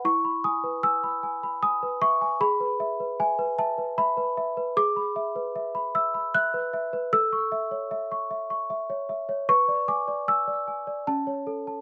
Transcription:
\new Staff \with { instrumentName = "Celesta" } { \time 3/4 \key e \major \tempo 4 = 76 << { cis'''8 dis'''8 e'''4 dis'''8 cis'''8 | b''4 gis''8 a''8 b''4 | \key a \major d'''4. e'''8 fis'''4 | e'''2. |
cis'''8 d'''8 e'''4 a''4 | } \\ { e'16 b''16 gis''16 b'16 gis''16 b''16 gis''16 b''16 gis''16 b'16 e''16 gis''16 | gis'16 b'16 e''16 b'16 e''16 b'16 e''16 b'16 e''16 b'16 e''16 b'16 | gis'16 b''16 e''16 b'16 e''16 b''16 e''16 b''16 e''16 b'16 e''16 b'16 | a'16 cis'''16 e''16 cis''16 e''16 cis'''16 e''16 cis'''16 e''16 cis''16 e''16 cis''16 |
b'16 d''16 gis''16 d''16 gis''16 d''16 gis''16 d''16 cis'16 cis''16 a'16 a''16 | } >> }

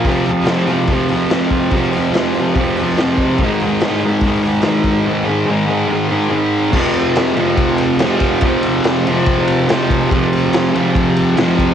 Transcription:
<<
  \new Staff \with { instrumentName = "Transistor combo organ" } { \time 4/4 \key aes \major \tempo 4 = 143 <f' aes' c''>1~ | <f' aes' c''>1 | <ees' aes' c''>1~ | <ees' aes' c''>1 |
\key f \minor <f' aes' c''>1~ | <f' aes' c''>1 | <f' aes' c''>1 | }
  \new Staff \with { instrumentName = "Distorted electric guitar" } { \clef bass \time 4/4 \key aes \major <f, c f>8 <c f>8 <f, c f>8 <c f>8 <f, c f>8 <c f>8 <f, c f>4 | <f, c f>8 <c f>8 <f, c f>8 <c f>8 <f, c f>8 <c f>8 <f, c f>4 | <aes, ees aes>8 <ees aes>8 <aes, ees aes>8 <ees aes>8 <aes, ees aes>8 <ees aes>8 <aes, ees aes>4 | <aes, ees aes>8 <ees aes>8 <aes, ees aes>8 <ees aes>8 <aes, ees aes>8 <ees aes>8 <aes, ees aes>4 |
\key f \minor <f, c f>4. <f, c f>4. <f, c f>4 | <f, c f>4. <f, c f>4. <f, c f>4 | <f, c f>4. <f, c f>4. <f, c f>4 | }
  \new DrumStaff \with { instrumentName = "Drums" } \drummode { \time 4/4 <hho bd>8 hho8 <hho sn>16 sn16 hho8 <hho bd>8 hho8 <hho sn>8 <hho bd>8 | <hho bd>8 hho8 <hho sn>8 hho8 <hho bd>8 hho16 sn16 <hho sn>8 <hho bd>8 | <hho bd>8 hho8 <hho sn>16 sn16 hho8 <hho bd>8 hho8 <hho sn>8 <hho bd>8 | r4 r4 r4 r4 |
<cymc bd>8 cymr8 <cymr sn>8 cymr8 <bd cymr>8 cymr8 <cymr sn>8 <bd cymr>8 | <bd cymr>8 cymr8 <cymr sn>8 cymr8 <bd cymr>8 cymr8 <cymr sn>8 <bd cymr>8 | <bd cymr>8 cymr8 <cymr sn>8 cymr8 <bd cymr>8 cymr8 <cymr sn>8 <bd cymr>8 | }
>>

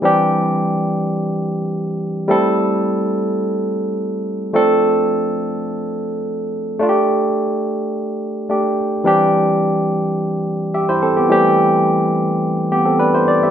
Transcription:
\new Staff \with { instrumentName = "Tine electric piano" } { \time 4/4 \key c \major \tempo 4 = 106 << { r1 | r1 | r1 | r1 |
r2. <g' e''>16 <e' c''>16 <c' a'>16 <b g'>16~ | <b g'>16 r2 r16 <b g'>16 <c' a'>16 <d' b'>16 <e' c''>16 d''16 <g' e''>16 | } \\ { <e g c' d' g'>1 | <g a c' e' a'>1 | <f a c' d' a'>1 | <a d' f' g'>2. <a d' g'>4 |
<e g c' d' g'>1 | <e g a c' g'>1 | } >> }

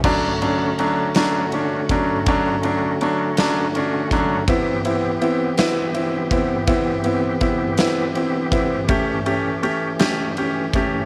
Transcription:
<<
  \new Staff \with { instrumentName = "Grand piano" } { \time 6/8 \key d \major \tempo 4. = 54 <fis cis' d'>8 <fis cis' d'>8 <fis cis' d'>8 <fis cis' d'>8 <cis' d'>8 <fis cis' d'>8 | <fis cis' d'>8 <fis cis' d'>8 <fis cis' d'>8 <fis cis' d'>8 <cis' d'>8 <fis cis' d'>8 | <b c' e'>8 <b c' e'>8 <b c' e'>8 <b c' e'>8 <c' e'>8 <b c' e'>8 | <b c' e'>8 <b c' e'>8 <b c' e'>8 <b c' e'>8 <c' e'>8 <b c' e'>8 |
<a cis' g'>8 <a cis' g'>8 <a cis' g'>8 <a cis' g'>8 <cis' g'>8 <a cis' g'>8 | }
  \new Staff \with { instrumentName = "Tonewheel organ" } { \time 6/8 \key d \major << { <d fis'>2.~ | <d fis'>2. | <e g'>2.~ | <e g'>2.~ |
<e g'>2. | } \\ { <a cis'>2.~ | <a cis'>2. | <b c'>2.~ | <b c'>2. |
<a cis'>2. | } >> }
  \new DrumStaff \with { instrumentName = "Drums" } \drummode { \time 6/8 <cymc bd>8 cymr8 cymr8 <cymr sn>8 cymr8 <bd cymr>8 | <bd cymr>8 cymr8 cymr8 <cymr sn>8 cymr8 <bd cymr>8 | <bd cymr>8 cymr8 cymr8 <cymr sn>8 cymr8 <bd cymr>8 | <bd cymr>8 cymr8 <bd cymr>8 <cymr sn>8 cymr8 <bd cymr>8 |
<bd cymr>8 cymr8 cymr8 <cymr sn>8 cymr8 <bd cymr>8 | }
>>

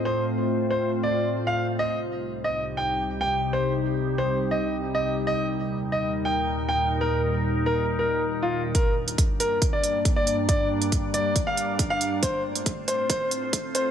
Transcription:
<<
  \new Staff \with { instrumentName = "Grand piano" } { \time 4/4 \key g \minor \tempo 4 = 138 c''8 r4 c''8 r16 d''8 r8 f''8 r16 | ees''8 r4 ees''8 r16 g''8 r8 g''8 r16 | c''8 r4 c''8 r16 ees''8 r8 ees''8 r16 | ees''8 r4 ees''8 r16 g''8 r8 g''8 r16 |
bes'8 r4 bes'8 r16 bes'8 r8 f'8 r16 | bes'8 r4 bes'8 r16 d''8 r8 d''8 r16 | d''8 r4 d''8 r16 f''8 r8 f''8 r16 | c''8 r4 c''8 c''8 r4 c''8 | }
  \new Staff \with { instrumentName = "Ambient pad" } { \time 4/4 \key g \minor << { <a, a f' c''>1 | <c, c ees' g'>1~ | <c, c ees' g'>1 | <ees, bes, ees' bes'>1~ |
<ees, bes, ees' bes'>1 | <g, g d' d''>1~ | <g, g d' d''>1 | <a, a f' c''>1 | } \\ { c'1 | g1~ | g1~ | g1~ |
g1 | bes1~ | bes1 | c'1 | } >> }
  \new DrumStaff \with { instrumentName = "Drums" } \drummode { \time 4/4 r4 r4 r4 r4 | r4 r4 r4 r4 | r4 r4 r4 r4 | r4 r4 r4 r4 |
r4 r4 r4 r4 | <hh bd>8. hh16 <hh bd>8 hh8 <hh bd>8 hh8 <hh bd>8 hh8 | <hh bd>8. hh16 <hh bd>8 hh8 <hh bd>8 hh8 <hh bd>8 hh8 | <hh bd>8. hh16 <hh bd>8 hh8 <hh bd>8 hh8 <hh bd>8 hh8 | }
>>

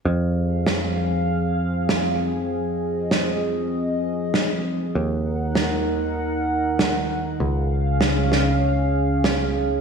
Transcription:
<<
  \new Staff \with { instrumentName = "Analog synth pad" } { \time 4/4 \key f \phrygian \tempo 4 = 98 << { f''1 | ees''1 | ges''1 | f''1 | } \\ { <f c' aes'>1~ | <f c' aes'>1 | <ees ees' bes'>1 | <des des' aes'>1 | } >> }
  \new Staff \with { instrumentName = "Picked electric bass" } { \clef bass \time 4/4 \key f \phrygian f,1~ | f,1 | ees,1 | des,1 | }
  \new DrumStaff \with { instrumentName = "Drums" } \drummode { \time 4/4 r4 sn4 r4 sn4 | r4 sn4 r4 sn4 | r4 sn4 r4 sn4 | r4 sn8 sn8 r4 sn4 | }
>>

